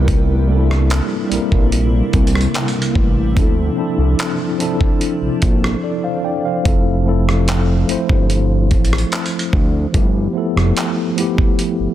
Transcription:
Already playing: analog synth bass C2, ambient pad C3 G3 A#3 E4, tine electric piano G3 A#3 C4 E4 F4 A#4 B4
0.08 kick, closed hi-hat
0.47 tine electric piano G3 A#3 C4 D4
0.52 tine electric piano A4
0.57 tine electric piano E4
0.71 cross-stick
0.90 clap, closed hi-hat
1.29 analog synth bass A#1, tine electric piano G3 A#3 C4 E4, closed hi-hat
1.34 tine electric piano A#4
1.52 analog synth bass A#1, kick
1.72 closed hi-hat
2.13 analog synth bass C2, kick, closed hi-hat
2.27 closed hi-hat
2.35 cross-stick
2.41 closed hi-hat
2.54 clap, closed hi-hat
2.68 closed hi-hat
2.82 closed hi-hat
2.95 analog synth bass A1, kick
3.35 analog synth bass D2, tine electric piano F3 C4 D4 E4, ambient pad F3 D4, kick, closed hi-hat
3.39 tine electric piano A4
3.76 tine electric piano F3 C4 D4 E4
3.80 tine electric piano A4
3.98 analog synth bass C2
4.19 clap, closed hi-hat
4.58 tine electric piano F3 C4 D4 E4, closed hi-hat
4.62 tine electric piano A4
4.81 kick
5.01 closed hi-hat
5.22 analog synth bass A#1
5.42 analog synth bass A#1, kick, closed hi-hat
5.64 cross-stick
5.84 tine electric piano A4 D5
6.04 tine electric piano C5 F5
6.24 tine electric piano D5 G5
6.45 tine electric piano C5 F5
6.63 analog synth bass F1, tine electric piano F3 A3 C4 E4, kick, closed hi-hat
6.68 tine electric piano A4
7.04 tine electric piano F3 A3 C4 E4
7.09 tine electric piano A4
7.29 cross-stick
7.48 clap, closed hi-hat
7.87 analog synth bass G1, tine electric piano F3 A3 C4 E4, closed hi-hat
7.91 tine electric piano C5
8.09 analog synth bass G1, kick
8.30 closed hi-hat
8.71 analog synth bass A1, kick, closed hi-hat
8.85 closed hi-hat
8.93 cross-stick
8.98 closed hi-hat
9.12 clap, closed hi-hat
9.26 closed hi-hat
9.39 closed hi-hat
9.53 analog synth bass D2, kick
9.92 analog synth bass G1, tine electric piano F3 A3 B3 E4, kick, closed hi-hat
9.97 tine electric piano G4
10.33 tine electric piano F3 A3 B3 E4
10.38 tine electric piano A4
10.56 analog synth bass F1, cross-stick
10.77 clap, closed hi-hat
11.15 tine electric piano F3 A3 B3 E4, closed hi-hat
11.20 tine electric piano G4
11.38 kick
11.59 closed hi-hat
11.79 analog synth bass G1

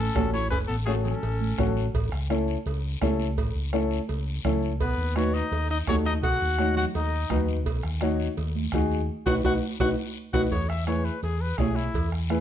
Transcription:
Already playing: clarinet C#4, trumpet A4
0.15 fingered electric bass A1, upright piano C#4 F#4 A4, bombo low, bombo rim, high conga, low timbale, short guiro
0.33 clarinet E4, trumpet C#5, short guiro
0.50 fingered electric bass F#1, clarinet C#4, trumpet B4, bombo low, cowbell, long guiro
0.68 fingered electric bass A1, clarinet B3, trumpet A4
0.85 clarinet A3, upright piano C#4 F#4 A4, trumpet G#4, bombo rim, high conga, short guiro
1.04 clarinet C#4, trumpet A4, low conga, short guiro
1.23 fingered electric bass A1, cowbell, long guiro
1.41 high conga
1.58 fingered electric bass A1, upright piano C#4 F#4 A4, bombo low, bombo rim, high conga, low conga, short guiro
1.77 short guiro
1.94 fingered electric bass A1, bombo low, cowbell, long guiro
2.12 fingered electric bass C#2, bombo rim
2.30 upright piano C#4 E4 A4, bombo rim, high conga, short guiro
2.48 short guiro
2.66 fingered electric bass C#2, cowbell, long guiro
3.01 fingered electric bass C#2, upright piano C#4 E4 A4, bombo low, bombo rim, high conga, low timbale, short guiro
3.20 short guiro
3.37 fingered electric bass A1, bombo low, cowbell, long guiro
3.55 fingered electric bass C#2
3.73 upright piano C#4 E4 A4, bombo rim, high conga, short guiro
3.91 short guiro
4.09 fingered electric bass C#2, cowbell, long guiro
4.45 fingered electric bass C#2, upright piano C#4 E4 A4, bombo low, bombo rim, high conga, low conga, short guiro
4.63 short guiro
4.80 fingered electric bass B1, clarinet B3, trumpet B4, bombo low, cowbell, long guiro
4.98 fingered electric bass D#2
5.16 upright piano D#4 F#4 B4, clarinet F#4, trumpet C#5, bombo rim, high conga, short guiro
5.34 clarinet D#4, trumpet D#5, short guiro
5.51 fingered electric bass D#2, cowbell, long guiro
5.70 clarinet D#4, trumpet D#5
5.87 fingered electric bass D#2, upright piano D#4 F#4 A4, clarinet F#4, trumpet C#5, bombo low, bombo rim, high conga, low timbale, short guiro
6.05 clarinet D#4, trumpet D#5, short guiro
6.23 fingered electric bass B1, clarinet F#4, trumpet F#5, bombo low, cowbell, long guiro
6.42 fingered electric bass D#2
6.58 upright piano D#4 F#4 C#5, bombo rim, high conga, short guiro
6.77 clarinet F#4, trumpet F#5, low conga, short guiro
6.95 fingered electric bass D#2, clarinet D#4, trumpet D#5, cowbell, long guiro
7.30 fingered electric bass D#2, upright piano D#4 F#4 B4, bombo low, bombo rim, high conga, low conga, short guiro
7.48 short guiro
7.66 fingered electric bass B1, bombo low, cowbell, long guiro
7.83 fingered electric bass D#2, bombo rim
8.01 upright piano D#4 F#4 C#5, bombo rim, high conga, short guiro
8.20 short guiro
8.37 fingered electric bass D#2, cowbell, long guiro
8.55 high conga
8.72 fingered electric bass D#2, upright piano D#4 F#4 G#4, bombo low, bombo rim, high conga, short guiro
8.92 short guiro
9.26 fingered electric bass B1, upright piano D#4 F#4 B4, clarinet F#4, trumpet F#5, bombo low, high conga, high timbale, long guiro
9.44 fingered electric bass B1, upright piano D#4 F#4 B4, clarinet F#4, trumpet F#5, bombo low, high conga, high timbale, long guiro
9.80 fingered electric bass B1, upright piano D#4 F#4 B4, clarinet F#4, trumpet F#5, bombo low, high conga, high timbale, long guiro
10.33 fingered electric bass B1, upright piano D#4 F#4 B4, clarinet F#4, trumpet F#5, bombo low, high conga, high timbale, long guiro
10.51 fingered electric bass E2, trumpet C#5, bombo low, cowbell, long guiro
10.69 trumpet E5, bombo rim
10.87 upright piano E4 G#4 B4, trumpet C#5, bombo rim, high conga, short guiro
11.05 trumpet B4, short guiro
11.23 fingered electric bass E2, trumpet G#4, cowbell, long guiro
11.41 trumpet B4
11.58 fingered electric bass B1, upright piano E4 G#4 C#5, trumpet G#4, bombo low, bombo rim, high conga, low timbale, short guiro
11.76 trumpet E4, short guiro
11.94 fingered electric bass E2, bombo low, cowbell, long guiro
12.12 bombo rim
12.30 upright piano E4 G#4 B4, bombo rim, high conga, short guiro

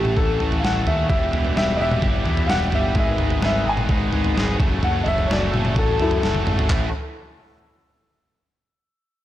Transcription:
Already playing: picked electric bass A1, overdriven electric guitar A2 E3 A3 C#4 A4, upright piano G4, transistor combo organ A4 F#5 C#6 E6
0.05 mid tom
0.17 picked electric bass A1, overdriven electric guitar E3 A3 C#4 A4, upright piano A4, kick, floor tom
0.39 picked electric bass A1, overdriven electric guitar A2 E3 A3 C#4 A4, floor tom
0.52 floor tom
0.60 overdriven electric guitar E3 A3, upright piano F5
0.64 picked electric bass A1, overdriven electric guitar C#4 A4, upright piano F#5, snare
0.86 picked electric bass D#2, overdriven electric guitar A3 C#4 A4, upright piano E5, floor tom
1.09 picked electric bass E1, overdriven electric guitar E2 B2 E3 G3 E4 G4, transistor combo organ G4 F#5 B5, upright piano E5, kick, floor tom
1.32 picked electric bass E1, overdriven electric guitar E3 G3 E4 G4, floor tom
1.45 floor tom
1.55 picked electric bass E1, overdriven electric guitar E2 B2 E3 G3 E4 G4, upright piano E5, snare
1.76 picked electric bass E1, overdriven electric guitar E2 B2 G3 E4 G4, upright piano D#5
1.81 overdriven electric guitar E3, upright piano E5
1.91 mid tom
2.01 picked electric bass G1, overdriven electric guitar E3 G3 E4 G4, kick, floor tom
2.24 overdriven electric guitar E2 B2 E3 G3 E4 G4, picked electric bass E2, floor tom
2.37 floor tom
2.46 picked electric bass E1, overdriven electric guitar E3 G3 E4 G4, upright piano F5 F#5, snare
2.70 picked electric bass G1, overdriven electric guitar E3 G3 E4 G4, floor tom
2.75 upright piano E5
2.95 picked electric bass G#1, overdriven electric guitar G#2 D#3 G#3 B3 D#4 G#4, transistor combo organ G#4 B4 D#6, kick, floor tom
2.99 upright piano E5
3.18 picked electric bass G#1, overdriven electric guitar G#3 B3 D#4 G#4, floor tom
3.30 floor tom
3.42 picked electric bass G#1, overdriven electric guitar G#2 D#3 G#3 B3 D#4 G#4, upright piano E5, snare
3.64 picked electric bass G#1, overdriven electric guitar G#2 D#3 G#3 B3 D#4 G#4, upright piano G5
3.69 upright piano G#5
3.77 mid tom
3.88 picked electric bass G#1, overdriven electric guitar G#3 B3 D#4 G#4, kick, floor tom
4.11 picked electric bass G#1, overdriven electric guitar G#2 D#3 G#3 B3 D#4 G#4, floor tom
4.24 floor tom
4.35 picked electric bass G#1, overdriven electric guitar G#3 B3 D#4 G#4, snare
4.59 picked electric bass F#1, overdriven electric guitar F#2 C#3 F#3 A3 C#4 A4, transistor combo organ F#4 E5 A5 C#6, kick, floor tom
4.83 picked electric bass F#1, overdriven electric guitar F#2 C#3 F#3 A3 C#4 A4, upright piano F#5, floor tom
5.03 picked electric bass F#1, overdriven electric guitar C#4 A4, upright piano D#5, floor tom
5.08 overdriven electric guitar F#3 A3, upright piano E5
5.18 floor tom
5.26 overdriven electric guitar F#2 C#3, upright piano C#5
5.31 picked electric bass F#1, overdriven electric guitar F#3 A3 C#4 A4, upright piano D5, snare
5.51 picked electric bass F#1, overdriven electric guitar F#2 C#3 F#3 A3 C#4 A4, mid tom
5.65 mid tom
5.75 picked electric bass A1, overdriven electric guitar F#3 A3 C#4 A4, upright piano A4, kick, floor tom
5.88 floor tom
5.99 picked electric bass F#2, overdriven electric guitar F#2 C#3 F#3 A3 C#4 A4, upright piano E4 A4, floor tom
6.11 floor tom
6.21 picked electric bass F#1, overdriven electric guitar F#3 A3 C#4 A4, snare
6.35 high tom
6.46 picked electric bass G#1, overdriven electric guitar F#3 A3 C#4 A4, mid tom
6.59 floor tom
6.69 picked electric bass A1, overdriven electric guitar A2 E3 A3 C#4 E4 A4, transistor combo organ A3 A4 C#5 F#5, kick, clap, floor tom

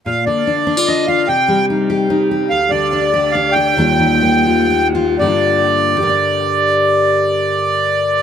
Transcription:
0.06 steel-string acoustic guitar A#2, accordion F5
0.26 steel-string acoustic guitar D3, accordion D5
0.47 steel-string acoustic guitar D4
0.67 steel-string acoustic guitar D4
0.77 steel-string acoustic guitar F4
0.87 steel-string acoustic guitar D4, accordion D#5
1.07 steel-string acoustic guitar F4, accordion F5
1.28 steel-string acoustic guitar C3, accordion G5
1.48 steel-string acoustic guitar G3
1.70 steel-string acoustic guitar D#4
1.90 steel-string acoustic guitar G4
2.10 steel-string acoustic guitar D#4
2.31 steel-string acoustic guitar G4
2.50 steel-string acoustic guitar D2, accordion F5
2.70 steel-string acoustic guitar D3, accordion D5
2.93 steel-string acoustic guitar D4
3.14 steel-string acoustic guitar G4
3.31 steel-string acoustic guitar D4, accordion F5
3.52 steel-string acoustic guitar G4, accordion G5
3.77 steel-string acoustic guitar D#2 D#3 G3 A#3 F4
3.99 steel-string acoustic guitar D#3
4.23 steel-string acoustic guitar A#3
4.46 steel-string acoustic guitar F4
4.70 steel-string acoustic guitar A#3
4.95 steel-string acoustic guitar F4
5.19 steel-string acoustic guitar G2 D3, accordion D5
5.24 steel-string acoustic guitar A#3 D4 F4
5.97 steel-string acoustic guitar G4
6.03 steel-string acoustic guitar A#4
6.09 steel-string acoustic guitar D5

